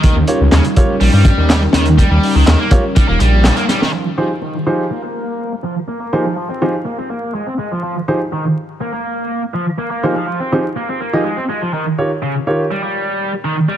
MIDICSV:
0, 0, Header, 1, 6, 480
1, 0, Start_track
1, 0, Key_signature, -4, "minor"
1, 0, Tempo, 487805
1, 33, Time_signature, 4, 2, 24, 8
1, 13551, End_track
2, 0, Start_track
2, 0, Title_t, "Grand piano"
2, 0, Program_c, 0, 0
2, 273, Note_on_c, 0, 67, 66
2, 273, Note_on_c, 0, 73, 86
2, 274, Note_on_c, 0, 65, 75
2, 274, Note_on_c, 0, 70, 70
2, 374, Note_off_c, 0, 67, 0
2, 374, Note_off_c, 0, 73, 0
2, 375, Note_off_c, 0, 65, 0
2, 375, Note_off_c, 0, 70, 0
2, 754, Note_on_c, 0, 65, 78
2, 754, Note_on_c, 0, 67, 72
2, 755, Note_on_c, 0, 70, 75
2, 755, Note_on_c, 0, 73, 88
2, 914, Note_off_c, 0, 65, 0
2, 914, Note_off_c, 0, 67, 0
2, 915, Note_off_c, 0, 70, 0
2, 915, Note_off_c, 0, 73, 0
2, 2669, Note_on_c, 0, 67, 77
2, 2669, Note_on_c, 0, 70, 79
2, 2670, Note_on_c, 0, 65, 82
2, 2670, Note_on_c, 0, 73, 89
2, 2772, Note_off_c, 0, 67, 0
2, 2772, Note_off_c, 0, 70, 0
2, 2772, Note_off_c, 0, 73, 0
2, 2773, Note_off_c, 0, 65, 0
2, 4109, Note_on_c, 0, 53, 67
2, 4109, Note_on_c, 0, 63, 63
2, 4109, Note_on_c, 0, 67, 61
2, 4109, Note_on_c, 0, 68, 65
2, 4110, Note_on_c, 0, 72, 81
2, 4212, Note_off_c, 0, 53, 0
2, 4212, Note_off_c, 0, 63, 0
2, 4212, Note_off_c, 0, 67, 0
2, 4212, Note_off_c, 0, 68, 0
2, 4212, Note_off_c, 0, 72, 0
2, 4589, Note_on_c, 0, 63, 68
2, 4591, Note_on_c, 0, 67, 66
2, 4591, Note_on_c, 0, 68, 66
2, 4591, Note_on_c, 0, 72, 82
2, 4592, Note_on_c, 0, 53, 72
2, 4752, Note_off_c, 0, 63, 0
2, 4753, Note_off_c, 0, 53, 0
2, 4753, Note_off_c, 0, 67, 0
2, 4753, Note_off_c, 0, 68, 0
2, 4753, Note_off_c, 0, 72, 0
2, 6030, Note_on_c, 0, 53, 77
2, 6030, Note_on_c, 0, 72, 86
2, 6031, Note_on_c, 0, 67, 68
2, 6032, Note_on_c, 0, 63, 70
2, 6032, Note_on_c, 0, 68, 69
2, 6133, Note_off_c, 0, 53, 0
2, 6133, Note_off_c, 0, 67, 0
2, 6133, Note_off_c, 0, 68, 0
2, 6133, Note_off_c, 0, 72, 0
2, 6134, Note_off_c, 0, 63, 0
2, 6510, Note_on_c, 0, 67, 69
2, 6511, Note_on_c, 0, 53, 81
2, 6511, Note_on_c, 0, 72, 85
2, 6512, Note_on_c, 0, 63, 69
2, 6513, Note_on_c, 0, 68, 72
2, 6613, Note_off_c, 0, 53, 0
2, 6613, Note_off_c, 0, 67, 0
2, 6613, Note_off_c, 0, 72, 0
2, 6614, Note_off_c, 0, 63, 0
2, 6614, Note_off_c, 0, 68, 0
2, 7950, Note_on_c, 0, 53, 71
2, 7951, Note_on_c, 0, 63, 64
2, 7951, Note_on_c, 0, 67, 63
2, 7951, Note_on_c, 0, 68, 66
2, 7951, Note_on_c, 0, 72, 81
2, 8053, Note_off_c, 0, 53, 0
2, 8053, Note_off_c, 0, 63, 0
2, 8053, Note_off_c, 0, 67, 0
2, 8053, Note_off_c, 0, 68, 0
2, 8053, Note_off_c, 0, 72, 0
2, 9873, Note_on_c, 0, 63, 70
2, 9873, Note_on_c, 0, 72, 86
2, 9874, Note_on_c, 0, 53, 76
2, 9874, Note_on_c, 0, 67, 69
2, 9874, Note_on_c, 0, 68, 71
2, 9974, Note_off_c, 0, 53, 0
2, 9974, Note_off_c, 0, 63, 0
2, 9974, Note_off_c, 0, 72, 0
2, 9975, Note_off_c, 0, 67, 0
2, 9975, Note_off_c, 0, 68, 0
2, 10355, Note_on_c, 0, 53, 78
2, 10356, Note_on_c, 0, 63, 72
2, 10356, Note_on_c, 0, 68, 70
2, 10356, Note_on_c, 0, 72, 86
2, 10357, Note_on_c, 0, 67, 71
2, 10455, Note_off_c, 0, 53, 0
2, 10455, Note_off_c, 0, 68, 0
2, 10455, Note_off_c, 0, 72, 0
2, 10456, Note_off_c, 0, 63, 0
2, 10456, Note_off_c, 0, 67, 0
2, 10954, Note_on_c, 0, 67, 75
2, 10955, Note_on_c, 0, 53, 82
2, 10955, Note_on_c, 0, 63, 72
2, 10956, Note_on_c, 0, 68, 71
2, 10956, Note_on_c, 0, 75, 91
2, 11053, Note_off_c, 0, 67, 0
2, 11054, Note_off_c, 0, 53, 0
2, 11054, Note_off_c, 0, 63, 0
2, 11054, Note_off_c, 0, 68, 0
2, 11054, Note_off_c, 0, 75, 0
2, 11792, Note_on_c, 0, 73, 80
2, 11793, Note_on_c, 0, 51, 67
2, 11793, Note_on_c, 0, 67, 66
2, 11794, Note_on_c, 0, 65, 64
2, 11794, Note_on_c, 0, 70, 65
2, 11894, Note_off_c, 0, 51, 0
2, 11894, Note_off_c, 0, 67, 0
2, 11894, Note_off_c, 0, 73, 0
2, 11895, Note_off_c, 0, 65, 0
2, 11895, Note_off_c, 0, 70, 0
2, 12270, Note_on_c, 0, 67, 70
2, 12270, Note_on_c, 0, 70, 64
2, 12271, Note_on_c, 0, 51, 71
2, 12271, Note_on_c, 0, 65, 65
2, 12271, Note_on_c, 0, 73, 81
2, 12432, Note_off_c, 0, 70, 0
2, 12433, Note_off_c, 0, 51, 0
2, 12433, Note_off_c, 0, 65, 0
2, 12433, Note_off_c, 0, 67, 0
2, 12433, Note_off_c, 0, 73, 0
2, 13551, End_track
3, 0, Start_track
3, 0, Title_t, "Ambient pad"
3, 0, Program_c, 1, 92
3, 0, Note_on_c, 1, 55, 83
3, 0, Note_on_c, 1, 61, 80
3, 0, Note_on_c, 1, 63, 75
3, 0, Note_on_c, 1, 70, 95
3, 3835, Note_off_c, 1, 63, 0
3, 3836, Note_off_c, 1, 61, 0
3, 3836, Note_off_c, 1, 70, 0
3, 3837, Note_off_c, 1, 55, 0
3, 3870, Note_on_c, 1, 56, 80
3, 3870, Note_on_c, 1, 72, 91
3, 3874, Note_on_c, 1, 63, 74
3, 3874, Note_on_c, 1, 65, 73
3, 7674, Note_off_c, 1, 72, 0
3, 7719, Note_on_c, 1, 70, 89
3, 11512, Note_off_c, 1, 56, 0
3, 11515, Note_off_c, 1, 65, 0
3, 11518, Note_off_c, 1, 70, 0
3, 11557, Note_on_c, 1, 58, 84
3, 11557, Note_on_c, 1, 67, 76
3, 11558, Note_on_c, 1, 73, 92
3, 13551, Note_off_c, 1, 58, 0
3, 13551, Note_off_c, 1, 63, 0
3, 13551, Note_off_c, 1, 67, 0
3, 13551, Note_off_c, 1, 73, 0
3, 13551, End_track
4, 0, Start_track
4, 0, Title_t, "Distorted electric guitar"
4, 0, Program_c, 2, 30
4, 35, Note_on_c, 2, 51, 80
4, 139, Note_off_c, 2, 51, 0
4, 511, Note_on_c, 2, 49, 85
4, 618, Note_off_c, 2, 49, 0
4, 993, Note_on_c, 2, 55, 106
4, 1099, Note_off_c, 2, 55, 0
4, 1114, Note_on_c, 2, 55, 76
4, 1582, Note_off_c, 2, 55, 0
4, 1711, Note_on_c, 2, 51, 102
4, 1817, Note_off_c, 2, 51, 0
4, 1949, Note_on_c, 2, 55, 100
4, 2057, Note_off_c, 2, 55, 0
4, 2073, Note_on_c, 2, 55, 75
4, 2302, Note_off_c, 2, 55, 0
4, 2311, Note_on_c, 2, 51, 78
4, 2416, Note_off_c, 2, 51, 0
4, 2430, Note_on_c, 2, 51, 86
4, 2537, Note_off_c, 2, 51, 0
4, 2552, Note_on_c, 2, 58, 76
4, 2657, Note_off_c, 2, 58, 0
4, 2909, Note_on_c, 2, 55, 107
4, 3016, Note_off_c, 2, 55, 0
4, 3033, Note_on_c, 2, 58, 80
4, 3141, Note_off_c, 2, 58, 0
4, 3150, Note_on_c, 2, 55, 105
4, 3377, Note_off_c, 2, 55, 0
4, 3389, Note_on_c, 2, 55, 84
4, 3506, Note_off_c, 2, 55, 0
4, 3511, Note_on_c, 2, 58, 105
4, 3575, Note_off_c, 2, 58, 0
4, 3633, Note_on_c, 2, 55, 72
4, 3749, Note_off_c, 2, 55, 0
4, 3750, Note_on_c, 2, 51, 80
4, 3859, Note_off_c, 2, 51, 0
4, 3870, Note_on_c, 2, 53, 76
4, 3977, Note_off_c, 2, 53, 0
4, 4350, Note_on_c, 2, 51, 77
4, 4457, Note_off_c, 2, 51, 0
4, 4832, Note_on_c, 2, 58, 98
4, 4938, Note_off_c, 2, 58, 0
4, 4954, Note_on_c, 2, 58, 71
4, 5422, Note_off_c, 2, 58, 0
4, 5549, Note_on_c, 2, 53, 91
4, 5657, Note_off_c, 2, 53, 0
4, 5790, Note_on_c, 2, 58, 93
4, 5897, Note_off_c, 2, 58, 0
4, 5912, Note_on_c, 2, 58, 75
4, 6141, Note_off_c, 2, 58, 0
4, 6153, Note_on_c, 2, 53, 69
4, 6257, Note_off_c, 2, 53, 0
4, 6269, Note_on_c, 2, 53, 82
4, 6377, Note_off_c, 2, 53, 0
4, 6390, Note_on_c, 2, 60, 71
4, 6495, Note_off_c, 2, 60, 0
4, 6747, Note_on_c, 2, 58, 99
4, 6855, Note_off_c, 2, 58, 0
4, 6870, Note_on_c, 2, 60, 69
4, 6979, Note_off_c, 2, 60, 0
4, 6988, Note_on_c, 2, 58, 91
4, 7219, Note_off_c, 2, 58, 0
4, 7230, Note_on_c, 2, 56, 76
4, 7347, Note_off_c, 2, 56, 0
4, 7349, Note_on_c, 2, 60, 100
4, 7414, Note_off_c, 2, 60, 0
4, 7471, Note_on_c, 2, 56, 74
4, 7587, Note_off_c, 2, 56, 0
4, 7590, Note_on_c, 2, 53, 75
4, 7700, Note_off_c, 2, 53, 0
4, 7711, Note_on_c, 2, 53, 77
4, 7817, Note_off_c, 2, 53, 0
4, 8193, Note_on_c, 2, 51, 82
4, 8298, Note_off_c, 2, 51, 0
4, 8670, Note_on_c, 2, 58, 95
4, 8777, Note_off_c, 2, 58, 0
4, 8794, Note_on_c, 2, 58, 70
4, 9262, Note_off_c, 2, 58, 0
4, 9392, Note_on_c, 2, 53, 96
4, 9498, Note_off_c, 2, 53, 0
4, 9631, Note_on_c, 2, 58, 96
4, 9737, Note_off_c, 2, 58, 0
4, 9752, Note_on_c, 2, 58, 73
4, 9981, Note_off_c, 2, 58, 0
4, 9994, Note_on_c, 2, 53, 69
4, 10098, Note_off_c, 2, 53, 0
4, 10111, Note_on_c, 2, 53, 77
4, 10217, Note_off_c, 2, 53, 0
4, 10232, Note_on_c, 2, 60, 75
4, 10337, Note_off_c, 2, 60, 0
4, 10590, Note_on_c, 2, 58, 100
4, 10697, Note_off_c, 2, 58, 0
4, 10714, Note_on_c, 2, 60, 70
4, 10822, Note_off_c, 2, 60, 0
4, 10829, Note_on_c, 2, 58, 93
4, 11059, Note_off_c, 2, 58, 0
4, 11071, Note_on_c, 2, 56, 77
4, 11187, Note_off_c, 2, 56, 0
4, 11192, Note_on_c, 2, 60, 99
4, 11255, Note_off_c, 2, 60, 0
4, 11313, Note_on_c, 2, 56, 71
4, 11429, Note_off_c, 2, 56, 0
4, 11433, Note_on_c, 2, 53, 70
4, 11541, Note_off_c, 2, 53, 0
4, 11550, Note_on_c, 2, 51, 77
4, 11657, Note_off_c, 2, 51, 0
4, 12031, Note_on_c, 2, 49, 81
4, 12137, Note_off_c, 2, 49, 0
4, 12509, Note_on_c, 2, 55, 98
4, 12616, Note_off_c, 2, 55, 0
4, 12632, Note_on_c, 2, 55, 72
4, 13102, Note_off_c, 2, 55, 0
4, 13230, Note_on_c, 2, 51, 100
4, 13337, Note_off_c, 2, 51, 0
4, 13472, Note_on_c, 2, 55, 96
4, 13551, Note_off_c, 2, 55, 0
4, 13551, End_track
5, 0, Start_track
5, 0, Title_t, "Detuned saw bass"
5, 0, Program_c, 3, 39
5, 37, Note_on_c, 3, 39, 42
5, 132, Note_off_c, 3, 39, 0
5, 155, Note_on_c, 3, 39, 96
5, 237, Note_off_c, 3, 39, 0
5, 400, Note_on_c, 3, 37, 84
5, 479, Note_off_c, 3, 37, 0
5, 515, Note_on_c, 3, 39, 97
5, 598, Note_off_c, 3, 39, 0
5, 991, Note_on_c, 3, 34, 96
5, 1076, Note_off_c, 3, 34, 0
5, 1112, Note_on_c, 3, 43, 105
5, 1278, Note_off_c, 3, 43, 0
5, 1351, Note_on_c, 3, 39, 87
5, 1653, Note_off_c, 3, 39, 0
5, 1710, Note_on_c, 3, 39, 83
5, 2013, Note_off_c, 3, 39, 0
5, 2070, Note_on_c, 3, 39, 104
5, 2154, Note_off_c, 3, 39, 0
5, 2314, Note_on_c, 3, 37, 87
5, 2396, Note_off_c, 3, 37, 0
5, 2430, Note_on_c, 3, 39, 99
5, 2515, Note_off_c, 3, 39, 0
5, 3033, Note_on_c, 3, 27, 83
5, 3116, Note_off_c, 3, 27, 0
5, 3151, Note_on_c, 3, 34, 103
5, 3453, Note_off_c, 3, 34, 0
5, 13551, End_track
6, 0, Start_track
6, 0, Title_t, "Drums"
6, 35, Note_on_c, 9, 42, 77
6, 37, Note_on_c, 9, 36, 113
6, 133, Note_off_c, 9, 42, 0
6, 135, Note_off_c, 9, 36, 0
6, 270, Note_on_c, 9, 42, 61
6, 369, Note_off_c, 9, 42, 0
6, 510, Note_on_c, 9, 38, 105
6, 514, Note_on_c, 9, 39, 95
6, 514, Note_on_c, 9, 42, 82
6, 609, Note_off_c, 9, 38, 0
6, 612, Note_off_c, 9, 39, 0
6, 612, Note_off_c, 9, 42, 0
6, 633, Note_on_c, 9, 42, 47
6, 731, Note_off_c, 9, 42, 0
6, 752, Note_on_c, 9, 42, 65
6, 755, Note_on_c, 9, 36, 103
6, 850, Note_off_c, 9, 42, 0
6, 853, Note_off_c, 9, 36, 0
6, 989, Note_on_c, 9, 46, 79
6, 1088, Note_off_c, 9, 46, 0
6, 1228, Note_on_c, 9, 36, 88
6, 1229, Note_on_c, 9, 42, 69
6, 1327, Note_off_c, 9, 36, 0
6, 1328, Note_off_c, 9, 42, 0
6, 1473, Note_on_c, 9, 38, 125
6, 1474, Note_on_c, 9, 39, 100
6, 1474, Note_on_c, 9, 42, 87
6, 1571, Note_off_c, 9, 38, 0
6, 1572, Note_off_c, 9, 42, 0
6, 1573, Note_off_c, 9, 39, 0
6, 1701, Note_on_c, 9, 38, 103
6, 1713, Note_on_c, 9, 42, 82
6, 1800, Note_off_c, 9, 38, 0
6, 1812, Note_off_c, 9, 42, 0
6, 1826, Note_on_c, 9, 42, 38
6, 1924, Note_off_c, 9, 42, 0
6, 1952, Note_on_c, 9, 36, 85
6, 1957, Note_on_c, 9, 42, 64
6, 2051, Note_off_c, 9, 36, 0
6, 2055, Note_off_c, 9, 42, 0
6, 2197, Note_on_c, 9, 46, 72
6, 2295, Note_off_c, 9, 46, 0
6, 2430, Note_on_c, 9, 42, 92
6, 2433, Note_on_c, 9, 39, 95
6, 2436, Note_on_c, 9, 38, 125
6, 2529, Note_off_c, 9, 42, 0
6, 2531, Note_off_c, 9, 39, 0
6, 2535, Note_off_c, 9, 38, 0
6, 2665, Note_on_c, 9, 42, 75
6, 2668, Note_on_c, 9, 36, 89
6, 2763, Note_off_c, 9, 42, 0
6, 2767, Note_off_c, 9, 36, 0
6, 2913, Note_on_c, 9, 42, 79
6, 2917, Note_on_c, 9, 36, 108
6, 3012, Note_off_c, 9, 42, 0
6, 3016, Note_off_c, 9, 36, 0
6, 3150, Note_on_c, 9, 42, 54
6, 3248, Note_off_c, 9, 42, 0
6, 3388, Note_on_c, 9, 38, 102
6, 3392, Note_on_c, 9, 39, 102
6, 3395, Note_on_c, 9, 42, 77
6, 3486, Note_off_c, 9, 38, 0
6, 3491, Note_off_c, 9, 39, 0
6, 3494, Note_off_c, 9, 42, 0
6, 3510, Note_on_c, 9, 42, 40
6, 3608, Note_off_c, 9, 42, 0
6, 3632, Note_on_c, 9, 38, 52
6, 3632, Note_on_c, 9, 42, 71
6, 3730, Note_off_c, 9, 38, 0
6, 3731, Note_off_c, 9, 42, 0
6, 3760, Note_on_c, 9, 38, 61
6, 3858, Note_off_c, 9, 38, 0
6, 13551, End_track
0, 0, End_of_file